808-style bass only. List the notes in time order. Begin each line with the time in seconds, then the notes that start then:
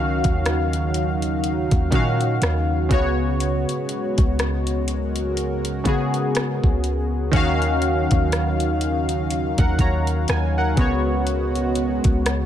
Already playing: C#2
0.25 D#2
1.72 D#2
1.92 A#2
2.42 D#2
2.91 C#2
4.18 C#2
5.86 C#3
6.64 C#2
7.33 D#2
8.12 D#2
9.59 D#2
9.79 D#2
10.29 D#2
10.78 C#2
12.05 C#2